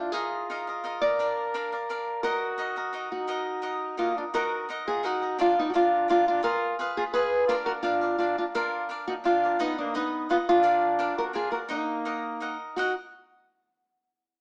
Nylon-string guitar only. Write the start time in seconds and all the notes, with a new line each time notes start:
Already playing: F4
0.12 G#4
1.01 D5
2.23 A#4
3.12 F#4
3.99 F4
4.18 F4
4.35 A#4
4.88 G#4
5.05 F#4
5.41 F4
5.59 D#4
5.70 F#4
5.76 F4
6.10 F4
6.28 F4
6.44 A#4
6.97 G#4
7.14 B4
7.49 A#4
7.66 A#4
7.83 F4
8.18 F4
8.38 F4
8.55 A#4
9.07 F#4
9.25 F4
9.60 D#4
9.78 D4
9.96 D#4
10.31 F4
10.49 F4
11.18 A#4
11.35 G#4
11.52 A#4
11.71 D#4
12.76 F#4